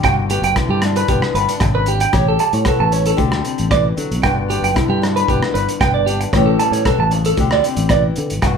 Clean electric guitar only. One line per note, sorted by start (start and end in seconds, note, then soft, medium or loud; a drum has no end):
0.05 0.16 G5 medium
0.31 0.42 G4 medium
0.44 0.55 G5 medium
0.70 0.82 G4 medium
0.97 1.08 B4 medium
1.09 1.21 G4 medium
1.35 1.47 B4 medium
1.62 muted clean electric guitar stroke medium
1.75 1.86 B4 medium
1.88 2.00 G4 medium
2.01 2.13 G5 medium
2.14 2.26 C#5 medium
2.28 2.39 A4 medium
2.40 2.52 A5 medium
2.54 2.65 C#5 medium
2.67 2.79 A4 medium
2.80 2.92 A5 medium
2.93 3.05 C#5 medium
3.07 3.18 A4 medium
3.72 3.84 D5 medium
4.23 4.36 G5 medium
4.50 4.62 G4 medium
4.64 4.75 G5 medium
4.90 5.01 G4 medium
5.16 5.28 B4 medium
5.29 5.41 G4 medium
5.54 5.67 B4 medium
5.81 5.93 G5 medium
5.94 6.06 D5 medium
6.06 6.19 G4 medium
6.21 muted clean electric guitar stroke medium
6.33 6.46 C#5 medium
6.46 6.58 A4 medium
6.59 6.72 A5 medium
6.72 6.84 C#5 medium
6.86 6.98 A4 medium
7.00 7.11 A5 medium
7.13 muted clean electric guitar stroke medium
7.26 7.37 A4 medium
7.52 7.64 D5 medium
7.91 8.03 D5 medium
8.43 muted clean electric guitar stroke medium